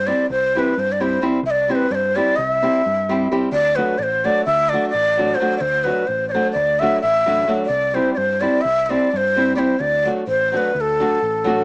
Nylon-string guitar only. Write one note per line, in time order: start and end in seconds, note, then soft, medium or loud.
0.06 0.25 G3 medium
0.06 0.25 C4 soft
0.06 0.25 E4 medium
0.06 0.26 G4 medium
0.55 0.73 G3 soft
0.55 0.73 C4 medium
0.55 0.73 E4 medium
0.55 0.74 G4 medium
1.00 1.18 G3 medium
1.00 1.18 C4 medium
1.00 1.18 E4 soft
1.00 1.18 G4 medium
1.22 1.39 G3 medium
1.22 1.39 C4 medium
1.22 1.39 E4 medium
1.22 1.39 G4 medium
1.68 1.86 G3 medium
1.68 1.86 C4 medium
1.68 1.86 E4 soft
1.68 1.87 G4 medium
2.16 2.33 G3 medium
2.16 2.34 C4 medium
2.16 2.34 E4 medium
2.16 2.34 G4 medium
2.63 2.80 G3 medium
2.63 2.81 C4 medium
2.63 2.81 E4 medium
2.63 2.81 G4 medium
3.09 3.26 G3 medium
3.09 3.26 C4 medium
3.09 3.27 E4 medium
3.09 3.27 G4 medium
3.32 3.48 G3 medium
3.32 3.48 C4 medium
3.32 3.48 E4 medium
3.32 3.49 G4 medium
3.76 3.94 F#3 medium
3.76 3.95 A3 soft
3.76 3.95 D4 medium
3.76 3.95 F#4 medium
4.24 4.42 F#3 medium
4.24 4.42 A3 soft
4.24 4.43 D4 soft
4.24 4.43 F#4 medium
4.73 4.90 F#3 medium
4.73 4.90 A3 medium
4.73 4.91 D4 medium
4.73 4.91 F#4 medium
5.17 5.35 F#3 medium
5.17 5.35 A3 medium
5.17 5.35 D4 medium
5.17 5.36 F#4 medium
5.40 5.57 F#3 medium
5.40 5.57 A3 medium
5.40 5.57 D4 medium
5.40 5.58 F#4 medium
5.85 6.03 F#3 medium
5.85 6.04 A3 soft
5.85 6.04 D4 medium
5.85 6.04 F#4 medium
6.34 6.52 F#3 medium
6.34 6.52 A3 medium
6.34 6.52 D4 soft
6.34 6.52 F#4 medium
6.81 6.99 F#3 medium
6.81 6.99 A3 medium
6.81 6.99 D4 medium
6.81 7.00 F#4 medium
7.26 7.44 F#3 medium
7.26 7.44 A3 soft
7.26 7.44 D4 medium
7.26 7.44 F#4 medium
7.47 7.65 F#3 medium
7.47 7.65 A3 soft
7.47 7.66 D4 medium
7.47 7.66 F#4 medium
7.94 8.12 G3 medium
7.94 8.12 C4 medium
7.94 8.13 E4 soft
7.94 8.13 G4 medium
8.41 8.60 G3 medium
8.41 8.60 C4 soft
8.41 8.60 E4 medium
8.41 8.61 G4 medium
8.89 9.08 G3 medium
8.89 9.08 C4 medium
8.89 9.08 E4 medium
8.89 9.09 G4 medium
9.36 9.54 G3 medium
9.36 9.54 C4 medium
9.36 9.54 E4 medium
9.36 9.54 G4 medium
9.55 9.74 G3 medium
9.55 9.74 C4 medium
9.55 9.75 E4 medium
9.55 9.75 G4 medium
10.04 10.22 F#3 soft
10.04 10.23 A3 soft
10.04 10.23 D4 soft
10.04 10.23 F#4 medium
10.52 10.70 F#3 medium
10.52 10.70 A3 medium
10.52 10.70 D4 medium
10.52 10.71 F#4 medium
11.00 11.18 F#3 medium
11.00 11.18 A3 soft
11.00 11.18 D4 medium
11.00 11.18 F#4 medium
11.44 11.62 F#3 medium
11.44 11.62 A3 medium
11.44 11.63 D4 medium
11.44 11.64 F#4 medium